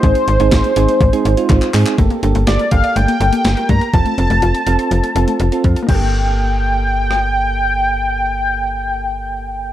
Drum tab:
CC |----------------|----------------|----------------|x---------------|
HH |xxxxxxxxxxxxxxox|xxxxxxxxxxxxxxxx|xxxxxxxxxxxxxxxx|----------------|
CP |----x-------xxxx|----------------|----------------|----------------|
SD |----o-----------|----o-------o---|----------------|----------r-----|
BD |o---o---o---o---|o-----o-------o-|o-------------o-|o---------------|

CC |----------------|
HH |----------------|
CP |----------------|
SD |----------------|
BD |----------------|